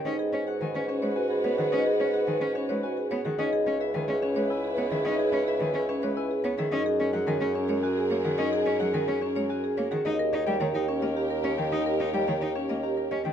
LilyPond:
<<
  \new Staff \with { instrumentName = "Harp" } { \time 3/4 \key cis \dorian \tempo 4 = 108 dis''8 cis''16 fis''16 gis''8 cis''16 b'16 gis''8 cis''16 fis''16 | dis''8 cis''16 fis''16 gis''8 cis''16 b'16 gis''8 cis''16 fis''16 | dis''8 cis''16 e''16 gis''8 cis''16 b'16 gis''8 cis''16 e''16 | dis''8 cis''16 e''16 gis''8 cis''16 b'16 gis''8 cis''16 e''16 |
dis''8 cis''16 fis''16 gis''8 cis''16 ais'16 gis''8 cis''16 fis''16 | dis''8 cis''16 fis''16 gis''8 cis''16 ais'16 gis''8 cis''16 fis''16 | dis''8 cis''16 g''16 ais''8 cis''16 ais'16 ais''8 cis''16 g''16 | dis''8 cis''16 g''16 ais''8 cis''16 ais'16 ais''8 cis''16 g''16 | }
  \new Staff \with { instrumentName = "French horn" } { \time 3/4 \key cis \dorian b'2.~ | b'2~ b'8. r16 | b'2.~ | b'2~ b'8. r16 |
ais'2.~ | ais'2~ ais'8. r16 | g'2.~ | g'2~ g'8. r16 | }
  \new Staff \with { instrumentName = "String section" } { \time 3/4 \key cis \dorian <fis' b'>2.~ | <fis' b'>2~ <fis' b'>8. r16 | <e' b'>2.~ | <e' b'>2~ <e' b'>8. r16 |
<gis' ais'>2.~ | <gis' ais'>2~ <gis' ais'>8. r16 | <g' ais'>2.~ | <g' ais'>2~ <g' ais'>8. r16 | }
  \new Staff \with { instrumentName = "Marimba" } { \time 3/4 \key cis \dorian dis'16 gis'16 cis''16 gis'16 r16 gis'16 cis'16 cis''16 fis'16 gis'16 cis''16 gis'16 | dis'16 gis'16 cis''16 gis'16 r16 gis'16 cis'16 cis''16 fis'16 gis'16 cis''16 gis'16 | dis'16 gis'16 cis''16 gis'16 r16 gis'16 cis'16 cis''16 e'16 gis'16 cis''16 gis'16 | dis'16 gis'16 cis''16 gis'16 r16 gis'16 cis'16 cis''16 e'16 gis'16 cis''16 gis'16 |
dis'16 gis'16 cis''16 gis'16 ais'16 gis'16 cis'16 cis''16 fis'16 gis'16 cis''16 gis'16 | dis'16 gis'16 cis''16 gis'16 ais'16 gis'16 cis'16 cis''16 fis'16 gis'16 cis''16 gis'16 | dis'16 ais'16 dis''16 ais'16 cis''16 ais'16 cis'16 dis''16 g'16 ais'16 dis''16 ais'16 | dis'16 ais'16 dis''16 ais'16 cis''16 ais'16 cis'16 dis''16 g'16 ais'16 dis''16 ais'16 | }
  \new Staff \with { instrumentName = "Cello" } { \time 3/4 \key cis \dorian cis'16 r16 cis'16 r16 dis16 cis'16 r16 gis16 r8 b16 dis16 | cis'16 r16 cis'16 r16 dis16 cis'16 r16 gis16 r8 b16 dis16 | cis'16 r16 cis'16 r16 dis16 cis'16 r16 gis16 r8 b16 dis16 | cis'16 r16 cis'16 r16 dis16 cis'16 r16 gis16 r8 b16 dis16 |
cis'16 r16 cis'16 fis16 dis16 cis'16 r16 gis16 r8 ais16 dis16 | cis'16 r16 cis'16 fis16 dis16 cis'16 r16 gis16 r8 ais16 dis16 | dis'16 r16 dis'16 g16 dis16 dis'16 r16 ais16 r8 cis'16 dis16 | dis'16 r16 dis'16 g16 dis16 dis'16 r16 ais16 r8 cis'16 dis16 | }
  \new Staff \with { instrumentName = "Bassoon" } { \clef bass \time 3/4 \key cis \dorian gis,2.~ | gis,2. | cis,2.~ | cis,2. |
fis,2.~ | fis,2. | dis,2.~ | dis,2. | }
>>